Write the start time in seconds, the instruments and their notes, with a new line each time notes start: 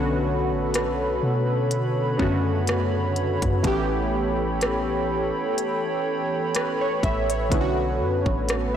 Already playing: 808-style bass B1, synth keys D3 A3 B3 C#4 F#4, analog synth pad A4 B4 C#5 B5
0.52 808-style bass A1
0.74 cross-stick, closed hi-hat
0.88 808-style bass B1
1.23 808-style bass B2
1.71 closed hi-hat
2.17 808-style bass F#2, synth keys C#3 A3 B3 C#4, kick
2.22 synth keys D3 F#4
2.67 cross-stick, closed hi-hat
3.16 closed hi-hat
3.42 808-style bass F#2, kick, closed hi-hat
3.63 808-style bass A1, synth keys E3 A3 B3 C#4, analog synth pad A4 G5, kick, closed hi-hat
3.67 synth keys G4
4.61 cross-stick, closed hi-hat
5.58 closed hi-hat
6.55 synth keys B4, cross-stick, closed hi-hat
6.81 synth keys C#5
7.03 808-style bass A1, synth keys E5, kick, closed hi-hat
7.30 synth keys C#5, closed hi-hat
7.50 808-style bass B1, synth keys D3 A3 B3 C#4, analog synth pad B4, kick, closed hi-hat
7.54 synth keys E4
7.61 synth keys F#4
8.00 808-style bass F#2
8.26 808-style bass A1, kick
8.49 cross-stick, closed hi-hat